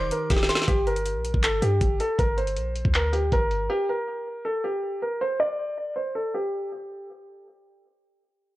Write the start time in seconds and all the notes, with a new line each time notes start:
Already playing: D#3 D#4 G4 A#4 C5 D6
0.02 F1
0.11 A#4, closed hi-hat
0.30 D#1 G4, kick, snare, closed hi-hat
0.36 snare
0.43 snare
0.49 C6, snare, closed hi-hat
0.55 snare, closed hi-hat
0.62 snare
0.68 G1 G4, kick, closed hi-hat
0.87 A#4, closed hi-hat
0.96 closed hi-hat
1.05 closed hi-hat
1.15 A#1
1.25 closed hi-hat
1.34 G1, kick
1.43 A4, clap, closed hi-hat
1.62 G2 G4, closed hi-hat
1.81 G1, kick, closed hi-hat
2.00 A4, closed hi-hat
2.18 G1 A#4, kick, closed hi-hat
2.37 C5, closed hi-hat
2.47 closed hi-hat
2.56 A#1, closed hi-hat
2.75 closed hi-hat
2.85 D2, kick
2.94 A#4, clap, closed hi-hat
3.13 G4, closed hi-hat
3.32 G1 A#4, kick, closed hi-hat
3.51 closed hi-hat
3.70 G4
3.89 A#4
4.45 A4
4.64 G4
5.02 A#4
5.21 C5
5.40 D5
5.96 C5
6.15 A4
6.34 G4